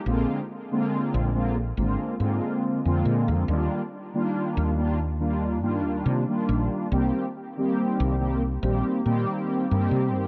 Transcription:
X:1
M:4/4
L:1/16
Q:"Swing 16ths" 1/4=70
K:Bbmix
V:1 name="Analog polysynth"
[D,A,B,CF]2 z [D,A,B,CF]3 [D,A,B,CF] z [D,A,B,CF]2 [D,A,B,CF]3 [D,A,B,CF]3 | [E,G,B,DF]2 z [E,G,B,DF]3 [E,G,B,DF] z [E,G,B,DF]2 [E,G,B,DF]3 [E,G,B,DF]3 | [E,G,B,CG]2 z [E,G,B,CG]3 [E,G,B,CG] z [E,G,B,CG]2 [E,G,B,CG]3 [E,G,B,CG]3 |]
V:2 name="Fretless electric bass" clef=bass
B,,, z4 B,,,3 A,,, z A,, z2 F,, B,, F,, | E,, z4 E,,4- E,, G,, E,, C, z B,,, z | C,, z4 C,,3 B,,, z B,, z2 G,, C, G,, |]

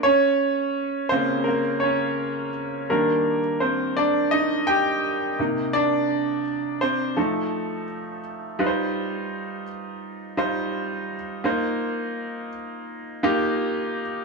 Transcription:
X:1
M:4/4
L:1/8
Q:"Swing 16ths" 1/4=84
K:Eblyd
V:1 name="Grand piano"
[_D_d]3 [Cc] [B,B] [Dd]2 z | [B,B]2 [Cc] [Dd] [Ee] [Gg]2 z | [Dd]3 [Cc] A2 z2 | [G,EF_c=c]3 z2 [G,EFc]2 z |
[B,EFc]3 z2 [B,EFG]2 z |]
V:2 name="Grand piano"
z3 [_D,B,F] z4 | [E,G,D] z6 [C,B,E]- | [C,B,E]2 z2 [F,A,E]3 z | z8 |
z8 |]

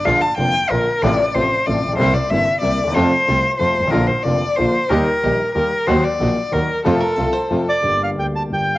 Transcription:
X:1
M:3/4
L:1/16
Q:1/4=185
K:Bb
V:1 name="Bandoneon"
z12 | z12 | z12 | z12 |
z12 | z12 | z12 | z8 z2 d2- |
[K:Gm] d2 f2 g2 a2 g3 z |]
V:2 name="Cello"
f2 a2 g4 B4 | d4 c4 d4 | c2 d2 =e4 d4 | c8 c4 |
B2 c2 d4 c4 | B8 B4 | c2 d6 B4 | A8- A2 z2 |
[K:Gm] z12 |]
V:3 name="Hollow-body jazz guitar"
z12 | z12 | z12 | z12 |
z12 | z12 | z12 | z2 B2 A2 c6 |
[K:Gm] z12 |]
V:4 name="String section"
[B,DF]2 z2 [B,DF]2 z2 [B,DF]2 z2 | [A,CF]2 z2 [A,CF]2 z2 [A,CF]2 z2 | [B,C=E]2 z2 [B,CE]2 z2 [B,CE]2 z2 | [A,CF]2 z2 [A,CF]2 z2 [A,CF]2 z2 |
[B,DF]2 z2 [B,DF]2 z2 [B,DF]2 z2 | [B,EG]2 z2 [B,EG]2 z2 [B,EG]2 z2 | [B,E_G]2 z2 [B,EG]2 z2 [B,EG]2 z2 | [A,CF]2 z2 [A,CF]2 z2 [A,CF]2 z2 |
[K:Gm] z12 |]
V:5 name="Grand piano" clef=bass
[B,,,B,,D,F,B,F]2 z2 [F,,,F,,D,F,B,F]2 z2 [B,,,B,,D,F,B,F]2 z2 | [A,,,A,,C,F,A,F]2 z2 [A,,,A,,C,F,A,F]2 z2 [A,,,A,,C,F,A,F]2 z/2 A,,,/2 B,,,/2 _C,,/2 | [C,,C,G,B,=E]2 z2 [G,,,G,,C,G,B,E]2 z2 [C,,C,G,B,E]2 z/2 D,,/2 _E,,/2 =E,,/2 | [F,,C,F,A,F]2 z2 [C,,C,F,A,F]2 z2 [F,,C,F,A,F]2 z/2 G,,,/2 _A,,,/2 =A,,,/2 |
[B,,,B,,D,F,B,F]2 z2 [F,,,F,,D,F,B,F]2 z2 [B,,,B,,D,F,B,F]2 z2 | [E,,E,G,B,G]2 z2 [B,,,B,,E,G,B,G]2 z2 [E,,E,G,B,G]2 z2 | [E,,E,_G,B,_G]2 z2 [B,,,B,,E,G,B,G]2 z2 [E,,E,G,B,G]2 z2 | [F,,C,F,A,F]2 z2 [C,,C,F,A,F]2 z2 [F,,C,F,A,F]2 z2 |
[K:Gm] [G,,,G,,D,G,B,G]4 [D,,D,G,B,G]4 [G,,,G,,D,G,B,G]4 |]
V:6 name="Double bass" clef=bass
B,,,2 z2 F,,,2 z2 B,,,2 z2 | A,,,2 z2 A,,,2 z2 A,,,2 B,,,2 | C,,2 z2 G,,,2 z2 C,,2 E,,2 | F,,2 z2 C,,2 z2 F,,2 _A,,,2 |
B,,,2 z2 F,,,2 z2 B,,,2 z2 | E,,2 z2 B,,,2 z2 E,,2 z2 | E,,2 z2 B,,,2 z2 E,,2 z2 | F,,2 z2 C,,2 z2 F,,2 z2 |
[K:Gm] G,,,4 D,,4 G,,,4 |]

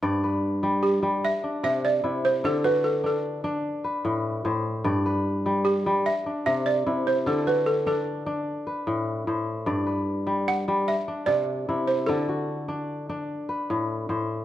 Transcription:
X:1
M:12/8
L:1/8
Q:3/8=100
K:G
V:1 name="Balafon"
z4 G2 e2 e d2 c | A B A A2 z6 z | z4 G2 e2 e d2 c | A B A A2 z6 z |
z4 f2 e2 d3 c | A6 z6 |]
V:2 name="Kora"
d B3 z3 D3 E2 | A F3 z3 B3 c2 | d B3 z3 D3 E2 | A F3 z3 B3 c2 |
d B3 z3 D3 E2 | A F3 z3 B3 c2 |]
V:3 name="Kora" clef=bass
G,,2 z G,2 G, z2 C,2 C,2 | D,2 z D2 D z2 A,,2 A,,2 | G,,2 z G,2 G, z2 C,2 C,2 | D,2 z D2 D z2 A,,2 A,,2 |
G,,2 z G,2 G, z2 C,2 C,2 | D,2 z D2 D z2 A,,2 A,,2 |]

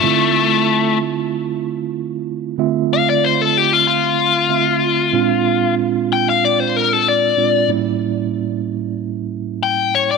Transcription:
X:1
M:4/4
L:1/16
Q:1/4=94
K:Dm
V:1 name="Overdriven electric guitar"
A,6 z8 z2 | z2 f d c A G F F8- | F4 z2 g f d c B A d4 | z12 g2 ^c d |]
V:2 name="Tine electric piano"
[D,A,CEF]16 | [D,A,CFe]12 [D,A,CFe]4 | [B,,_A,CDF]12- [B,,A,CDF]2 [B,,A,CDF]2 | [A,,G,B,^CE]16 |]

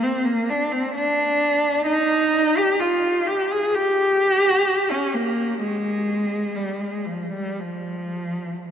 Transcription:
X:1
M:3/4
L:1/16
Q:1/4=65
K:Gphr
V:1 name="Cello"
C B, D C D4 E3 G | F2 G A G4- G _D B,2 | A,4 G, A, F, G, F,4 |]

